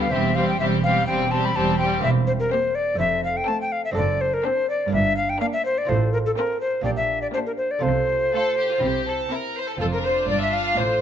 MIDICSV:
0, 0, Header, 1, 8, 480
1, 0, Start_track
1, 0, Key_signature, -1, "major"
1, 0, Tempo, 481541
1, 118, Time_signature, 4, 2, 24, 8
1, 6838, Tempo, 490196
1, 10906, End_track
2, 0, Start_track
2, 0, Title_t, "Recorder"
2, 0, Program_c, 0, 74
2, 6, Note_on_c, 0, 77, 62
2, 115, Note_on_c, 0, 76, 60
2, 130, Note_off_c, 0, 77, 0
2, 352, Note_on_c, 0, 77, 60
2, 367, Note_off_c, 0, 76, 0
2, 474, Note_off_c, 0, 77, 0
2, 486, Note_on_c, 0, 79, 60
2, 590, Note_off_c, 0, 79, 0
2, 596, Note_on_c, 0, 76, 60
2, 656, Note_off_c, 0, 76, 0
2, 834, Note_on_c, 0, 77, 66
2, 1059, Note_off_c, 0, 77, 0
2, 1064, Note_on_c, 0, 79, 70
2, 1308, Note_on_c, 0, 81, 62
2, 1323, Note_off_c, 0, 79, 0
2, 1447, Note_on_c, 0, 83, 69
2, 1462, Note_off_c, 0, 81, 0
2, 1553, Note_on_c, 0, 81, 65
2, 1567, Note_off_c, 0, 83, 0
2, 1777, Note_off_c, 0, 81, 0
2, 1783, Note_on_c, 0, 79, 69
2, 2020, Note_off_c, 0, 79, 0
2, 2026, Note_on_c, 0, 76, 68
2, 2086, Note_off_c, 0, 76, 0
2, 2263, Note_on_c, 0, 72, 61
2, 2319, Note_off_c, 0, 72, 0
2, 2389, Note_on_c, 0, 70, 59
2, 2506, Note_on_c, 0, 72, 66
2, 2521, Note_off_c, 0, 70, 0
2, 2742, Note_on_c, 0, 74, 65
2, 2757, Note_off_c, 0, 72, 0
2, 2980, Note_off_c, 0, 74, 0
2, 2986, Note_on_c, 0, 76, 74
2, 3223, Note_off_c, 0, 76, 0
2, 3234, Note_on_c, 0, 77, 64
2, 3358, Note_on_c, 0, 79, 72
2, 3373, Note_off_c, 0, 77, 0
2, 3467, Note_on_c, 0, 81, 71
2, 3482, Note_off_c, 0, 79, 0
2, 3589, Note_off_c, 0, 81, 0
2, 3601, Note_on_c, 0, 79, 62
2, 3709, Note_on_c, 0, 77, 66
2, 3724, Note_off_c, 0, 79, 0
2, 3830, Note_off_c, 0, 77, 0
2, 3835, Note_on_c, 0, 76, 61
2, 3888, Note_off_c, 0, 76, 0
2, 3952, Note_on_c, 0, 74, 69
2, 4197, Note_on_c, 0, 72, 63
2, 4212, Note_off_c, 0, 74, 0
2, 4323, Note_on_c, 0, 70, 67
2, 4338, Note_off_c, 0, 72, 0
2, 4435, Note_on_c, 0, 72, 67
2, 4450, Note_off_c, 0, 70, 0
2, 4674, Note_off_c, 0, 72, 0
2, 4683, Note_on_c, 0, 74, 69
2, 4914, Note_off_c, 0, 74, 0
2, 4922, Note_on_c, 0, 76, 73
2, 5143, Note_off_c, 0, 76, 0
2, 5149, Note_on_c, 0, 77, 68
2, 5278, Note_on_c, 0, 79, 75
2, 5293, Note_off_c, 0, 77, 0
2, 5383, Note_off_c, 0, 79, 0
2, 5389, Note_on_c, 0, 77, 72
2, 5445, Note_off_c, 0, 77, 0
2, 5512, Note_on_c, 0, 76, 61
2, 5628, Note_off_c, 0, 76, 0
2, 5634, Note_on_c, 0, 72, 65
2, 5762, Note_on_c, 0, 74, 59
2, 5777, Note_off_c, 0, 72, 0
2, 5871, Note_on_c, 0, 72, 69
2, 5886, Note_off_c, 0, 74, 0
2, 6101, Note_off_c, 0, 72, 0
2, 6107, Note_on_c, 0, 70, 62
2, 6163, Note_off_c, 0, 70, 0
2, 6240, Note_on_c, 0, 69, 59
2, 6293, Note_off_c, 0, 69, 0
2, 6347, Note_on_c, 0, 70, 64
2, 6581, Note_off_c, 0, 70, 0
2, 6587, Note_on_c, 0, 72, 66
2, 6820, Note_off_c, 0, 72, 0
2, 6825, Note_on_c, 0, 74, 72
2, 6882, Note_off_c, 0, 74, 0
2, 6941, Note_on_c, 0, 76, 65
2, 7183, Note_off_c, 0, 76, 0
2, 7189, Note_on_c, 0, 74, 63
2, 7244, Note_off_c, 0, 74, 0
2, 7303, Note_on_c, 0, 72, 64
2, 7360, Note_off_c, 0, 72, 0
2, 7427, Note_on_c, 0, 70, 53
2, 7483, Note_off_c, 0, 70, 0
2, 7535, Note_on_c, 0, 72, 59
2, 7671, Note_on_c, 0, 74, 58
2, 7685, Note_off_c, 0, 72, 0
2, 7782, Note_on_c, 0, 72, 69
2, 7797, Note_off_c, 0, 74, 0
2, 9237, Note_off_c, 0, 72, 0
2, 9725, Note_on_c, 0, 69, 55
2, 9779, Note_off_c, 0, 69, 0
2, 9848, Note_on_c, 0, 70, 48
2, 9901, Note_off_c, 0, 70, 0
2, 9965, Note_on_c, 0, 72, 49
2, 10193, Note_off_c, 0, 72, 0
2, 10199, Note_on_c, 0, 74, 55
2, 10318, Note_off_c, 0, 74, 0
2, 10323, Note_on_c, 0, 76, 49
2, 10437, Note_on_c, 0, 77, 53
2, 10452, Note_off_c, 0, 76, 0
2, 10670, Note_on_c, 0, 72, 52
2, 10684, Note_off_c, 0, 77, 0
2, 10903, Note_off_c, 0, 72, 0
2, 10906, End_track
3, 0, Start_track
3, 0, Title_t, "Violin section"
3, 0, Program_c, 1, 48
3, 108, Note_on_c, 1, 67, 46
3, 335, Note_off_c, 1, 67, 0
3, 346, Note_on_c, 1, 67, 39
3, 577, Note_off_c, 1, 67, 0
3, 589, Note_on_c, 1, 67, 45
3, 816, Note_off_c, 1, 67, 0
3, 828, Note_on_c, 1, 67, 44
3, 1062, Note_off_c, 1, 67, 0
3, 1074, Note_on_c, 1, 67, 40
3, 1305, Note_off_c, 1, 67, 0
3, 1317, Note_on_c, 1, 67, 45
3, 1535, Note_off_c, 1, 67, 0
3, 1547, Note_on_c, 1, 67, 46
3, 1780, Note_off_c, 1, 67, 0
3, 1792, Note_on_c, 1, 67, 43
3, 2027, Note_off_c, 1, 67, 0
3, 2511, Note_on_c, 1, 67, 50
3, 2867, Note_off_c, 1, 67, 0
3, 3464, Note_on_c, 1, 69, 50
3, 3825, Note_off_c, 1, 69, 0
3, 4431, Note_on_c, 1, 69, 52
3, 4790, Note_off_c, 1, 69, 0
3, 5396, Note_on_c, 1, 70, 51
3, 5753, Note_off_c, 1, 70, 0
3, 6356, Note_on_c, 1, 69, 53
3, 6714, Note_off_c, 1, 69, 0
3, 7321, Note_on_c, 1, 67, 49
3, 7676, Note_off_c, 1, 67, 0
3, 8281, Note_on_c, 1, 69, 57
3, 8505, Note_off_c, 1, 69, 0
3, 8522, Note_on_c, 1, 67, 50
3, 8640, Note_off_c, 1, 67, 0
3, 8640, Note_on_c, 1, 65, 47
3, 8761, Note_on_c, 1, 67, 52
3, 8762, Note_off_c, 1, 65, 0
3, 9002, Note_on_c, 1, 69, 54
3, 9003, Note_off_c, 1, 67, 0
3, 9236, Note_on_c, 1, 70, 55
3, 9244, Note_off_c, 1, 69, 0
3, 9482, Note_off_c, 1, 70, 0
3, 9486, Note_on_c, 1, 72, 59
3, 9607, Note_off_c, 1, 72, 0
3, 9612, Note_on_c, 1, 69, 45
3, 9725, Note_on_c, 1, 65, 43
3, 9729, Note_off_c, 1, 69, 0
3, 10906, Note_off_c, 1, 65, 0
3, 10906, End_track
4, 0, Start_track
4, 0, Title_t, "Violin section"
4, 0, Program_c, 2, 48
4, 0, Note_on_c, 2, 59, 40
4, 115, Note_off_c, 2, 59, 0
4, 122, Note_on_c, 2, 60, 43
4, 351, Note_off_c, 2, 60, 0
4, 363, Note_on_c, 2, 60, 41
4, 592, Note_off_c, 2, 60, 0
4, 604, Note_on_c, 2, 60, 39
4, 825, Note_off_c, 2, 60, 0
4, 837, Note_on_c, 2, 60, 40
4, 1066, Note_off_c, 2, 60, 0
4, 1078, Note_on_c, 2, 60, 45
4, 1303, Note_off_c, 2, 60, 0
4, 1315, Note_on_c, 2, 60, 41
4, 1543, Note_off_c, 2, 60, 0
4, 1555, Note_on_c, 2, 60, 47
4, 1776, Note_off_c, 2, 60, 0
4, 1788, Note_on_c, 2, 60, 40
4, 2025, Note_off_c, 2, 60, 0
4, 2511, Note_on_c, 2, 60, 50
4, 2867, Note_off_c, 2, 60, 0
4, 3469, Note_on_c, 2, 60, 53
4, 3827, Note_off_c, 2, 60, 0
4, 4429, Note_on_c, 2, 62, 50
4, 4789, Note_off_c, 2, 62, 0
4, 5397, Note_on_c, 2, 62, 58
4, 5754, Note_off_c, 2, 62, 0
4, 6358, Note_on_c, 2, 65, 46
4, 6715, Note_off_c, 2, 65, 0
4, 7315, Note_on_c, 2, 62, 51
4, 7673, Note_off_c, 2, 62, 0
4, 8293, Note_on_c, 2, 65, 44
4, 8646, Note_off_c, 2, 65, 0
4, 9249, Note_on_c, 2, 64, 43
4, 9606, Note_off_c, 2, 64, 0
4, 9730, Note_on_c, 2, 69, 47
4, 9777, Note_off_c, 2, 69, 0
4, 9850, Note_on_c, 2, 70, 39
4, 9963, Note_on_c, 2, 72, 47
4, 9965, Note_off_c, 2, 70, 0
4, 10203, Note_off_c, 2, 72, 0
4, 10206, Note_on_c, 2, 74, 46
4, 10322, Note_off_c, 2, 74, 0
4, 10330, Note_on_c, 2, 76, 42
4, 10441, Note_on_c, 2, 77, 44
4, 10445, Note_off_c, 2, 76, 0
4, 10674, Note_off_c, 2, 77, 0
4, 10674, Note_on_c, 2, 72, 44
4, 10906, Note_off_c, 2, 72, 0
4, 10906, End_track
5, 0, Start_track
5, 0, Title_t, "Lute"
5, 0, Program_c, 3, 24
5, 93, Note_on_c, 3, 60, 38
5, 106, Note_on_c, 3, 67, 37
5, 120, Note_on_c, 3, 40, 42
5, 510, Note_off_c, 3, 40, 0
5, 603, Note_on_c, 3, 40, 36
5, 989, Note_off_c, 3, 40, 0
5, 1075, Note_on_c, 3, 40, 42
5, 1464, Note_off_c, 3, 40, 0
5, 1553, Note_on_c, 3, 40, 39
5, 1944, Note_off_c, 3, 40, 0
5, 1979, Note_off_c, 3, 60, 0
5, 1986, Note_off_c, 3, 67, 0
5, 1989, Note_on_c, 3, 58, 43
5, 2004, Note_on_c, 3, 60, 43
5, 2018, Note_on_c, 3, 67, 40
5, 2033, Note_on_c, 3, 40, 46
5, 2400, Note_off_c, 3, 40, 0
5, 2939, Note_off_c, 3, 58, 0
5, 2943, Note_on_c, 3, 57, 42
5, 2947, Note_off_c, 3, 60, 0
5, 2954, Note_off_c, 3, 67, 0
5, 2959, Note_on_c, 3, 60, 40
5, 2976, Note_on_c, 3, 69, 41
5, 2987, Note_on_c, 3, 41, 44
5, 3357, Note_off_c, 3, 41, 0
5, 3888, Note_off_c, 3, 60, 0
5, 3898, Note_off_c, 3, 57, 0
5, 3900, Note_on_c, 3, 60, 43
5, 3914, Note_on_c, 3, 62, 43
5, 3915, Note_off_c, 3, 69, 0
5, 3931, Note_on_c, 3, 69, 45
5, 3945, Note_on_c, 3, 42, 46
5, 4316, Note_off_c, 3, 42, 0
5, 4857, Note_off_c, 3, 60, 0
5, 4861, Note_on_c, 3, 58, 43
5, 4866, Note_off_c, 3, 62, 0
5, 4875, Note_off_c, 3, 69, 0
5, 4877, Note_on_c, 3, 62, 40
5, 4894, Note_on_c, 3, 70, 43
5, 4909, Note_on_c, 3, 43, 46
5, 5280, Note_off_c, 3, 43, 0
5, 5820, Note_off_c, 3, 58, 0
5, 5828, Note_off_c, 3, 62, 0
5, 5831, Note_on_c, 3, 60, 41
5, 5837, Note_off_c, 3, 70, 0
5, 5846, Note_on_c, 3, 65, 44
5, 5863, Note_on_c, 3, 69, 43
5, 5872, Note_on_c, 3, 45, 48
5, 6242, Note_off_c, 3, 45, 0
5, 6786, Note_off_c, 3, 60, 0
5, 6790, Note_on_c, 3, 58, 39
5, 6793, Note_off_c, 3, 65, 0
5, 6802, Note_off_c, 3, 69, 0
5, 6806, Note_on_c, 3, 62, 39
5, 6822, Note_on_c, 3, 67, 40
5, 6834, Note_on_c, 3, 46, 43
5, 7202, Note_off_c, 3, 46, 0
5, 7743, Note_off_c, 3, 58, 0
5, 7747, Note_on_c, 3, 57, 38
5, 7751, Note_off_c, 3, 62, 0
5, 7760, Note_off_c, 3, 67, 0
5, 7763, Note_on_c, 3, 65, 42
5, 7773, Note_on_c, 3, 69, 39
5, 7789, Note_on_c, 3, 48, 43
5, 8166, Note_off_c, 3, 48, 0
5, 8709, Note_off_c, 3, 57, 0
5, 8717, Note_off_c, 3, 65, 0
5, 8719, Note_on_c, 3, 60, 36
5, 8722, Note_off_c, 3, 69, 0
5, 8734, Note_on_c, 3, 64, 36
5, 8746, Note_on_c, 3, 67, 35
5, 8760, Note_on_c, 3, 48, 38
5, 9132, Note_off_c, 3, 48, 0
5, 9672, Note_off_c, 3, 60, 0
5, 9682, Note_off_c, 3, 64, 0
5, 9683, Note_on_c, 3, 60, 33
5, 9689, Note_off_c, 3, 67, 0
5, 9696, Note_on_c, 3, 65, 34
5, 9712, Note_on_c, 3, 69, 31
5, 9724, Note_on_c, 3, 41, 34
5, 10163, Note_off_c, 3, 41, 0
5, 10167, Note_off_c, 3, 60, 0
5, 10203, Note_on_c, 3, 43, 32
5, 10639, Note_off_c, 3, 43, 0
5, 10675, Note_on_c, 3, 45, 36
5, 10906, Note_off_c, 3, 45, 0
5, 10906, Note_off_c, 3, 65, 0
5, 10906, Note_off_c, 3, 69, 0
5, 10906, End_track
6, 0, Start_track
6, 0, Title_t, "Viola section"
6, 0, Program_c, 4, 48
6, 0, Note_on_c, 4, 55, 39
6, 106, Note_off_c, 4, 55, 0
6, 118, Note_on_c, 4, 55, 48
6, 347, Note_off_c, 4, 55, 0
6, 359, Note_on_c, 4, 55, 39
6, 586, Note_off_c, 4, 55, 0
6, 598, Note_on_c, 4, 55, 41
6, 823, Note_off_c, 4, 55, 0
6, 835, Note_on_c, 4, 55, 37
6, 1069, Note_off_c, 4, 55, 0
6, 1080, Note_on_c, 4, 55, 43
6, 1308, Note_off_c, 4, 55, 0
6, 1320, Note_on_c, 4, 55, 44
6, 1543, Note_off_c, 4, 55, 0
6, 1555, Note_on_c, 4, 55, 44
6, 1788, Note_off_c, 4, 55, 0
6, 1799, Note_on_c, 4, 55, 48
6, 2030, Note_off_c, 4, 55, 0
6, 2511, Note_on_c, 4, 58, 50
6, 2867, Note_off_c, 4, 58, 0
6, 3465, Note_on_c, 4, 57, 54
6, 3825, Note_off_c, 4, 57, 0
6, 4431, Note_on_c, 4, 60, 51
6, 4790, Note_off_c, 4, 60, 0
6, 5397, Note_on_c, 4, 58, 55
6, 5754, Note_off_c, 4, 58, 0
6, 6360, Note_on_c, 4, 60, 51
6, 6716, Note_off_c, 4, 60, 0
6, 7317, Note_on_c, 4, 58, 51
6, 7674, Note_off_c, 4, 58, 0
6, 8282, Note_on_c, 4, 57, 47
6, 8640, Note_off_c, 4, 57, 0
6, 9247, Note_on_c, 4, 60, 49
6, 9605, Note_off_c, 4, 60, 0
6, 9724, Note_on_c, 4, 62, 40
6, 10906, Note_off_c, 4, 62, 0
6, 10906, End_track
7, 0, Start_track
7, 0, Title_t, "Cello section"
7, 0, Program_c, 5, 48
7, 116, Note_on_c, 5, 40, 57
7, 539, Note_off_c, 5, 40, 0
7, 592, Note_on_c, 5, 40, 50
7, 1015, Note_off_c, 5, 40, 0
7, 1068, Note_on_c, 5, 40, 59
7, 1492, Note_off_c, 5, 40, 0
7, 1549, Note_on_c, 5, 40, 56
7, 1973, Note_off_c, 5, 40, 0
7, 2023, Note_on_c, 5, 40, 68
7, 2406, Note_off_c, 5, 40, 0
7, 2987, Note_on_c, 5, 41, 65
7, 3368, Note_off_c, 5, 41, 0
7, 3947, Note_on_c, 5, 42, 69
7, 4328, Note_off_c, 5, 42, 0
7, 4908, Note_on_c, 5, 43, 69
7, 5291, Note_off_c, 5, 43, 0
7, 5871, Note_on_c, 5, 45, 67
7, 6253, Note_off_c, 5, 45, 0
7, 6832, Note_on_c, 5, 46, 62
7, 7212, Note_off_c, 5, 46, 0
7, 7794, Note_on_c, 5, 48, 63
7, 8179, Note_off_c, 5, 48, 0
7, 8758, Note_on_c, 5, 48, 60
7, 9141, Note_off_c, 5, 48, 0
7, 9723, Note_on_c, 5, 41, 49
7, 10169, Note_off_c, 5, 41, 0
7, 10202, Note_on_c, 5, 43, 44
7, 10644, Note_off_c, 5, 43, 0
7, 10677, Note_on_c, 5, 45, 52
7, 10906, Note_off_c, 5, 45, 0
7, 10906, End_track
8, 0, Start_track
8, 0, Title_t, "Double bass section"
8, 0, Program_c, 6, 48
8, 119, Note_on_c, 6, 28, 54
8, 540, Note_off_c, 6, 28, 0
8, 598, Note_on_c, 6, 28, 51
8, 1018, Note_off_c, 6, 28, 0
8, 1075, Note_on_c, 6, 28, 51
8, 1495, Note_off_c, 6, 28, 0
8, 1555, Note_on_c, 6, 28, 46
8, 1976, Note_off_c, 6, 28, 0
8, 2033, Note_on_c, 6, 28, 67
8, 2411, Note_off_c, 6, 28, 0
8, 2990, Note_on_c, 6, 29, 62
8, 3369, Note_off_c, 6, 29, 0
8, 3951, Note_on_c, 6, 30, 63
8, 4330, Note_off_c, 6, 30, 0
8, 4911, Note_on_c, 6, 31, 63
8, 5293, Note_off_c, 6, 31, 0
8, 5871, Note_on_c, 6, 33, 66
8, 6253, Note_off_c, 6, 33, 0
8, 6838, Note_on_c, 6, 34, 56
8, 7215, Note_off_c, 6, 34, 0
8, 7801, Note_on_c, 6, 36, 60
8, 8182, Note_off_c, 6, 36, 0
8, 8763, Note_on_c, 6, 36, 56
8, 9143, Note_off_c, 6, 36, 0
8, 9731, Note_on_c, 6, 29, 49
8, 10173, Note_off_c, 6, 29, 0
8, 10207, Note_on_c, 6, 31, 41
8, 10647, Note_off_c, 6, 31, 0
8, 10682, Note_on_c, 6, 33, 43
8, 10906, Note_off_c, 6, 33, 0
8, 10906, End_track
0, 0, End_of_file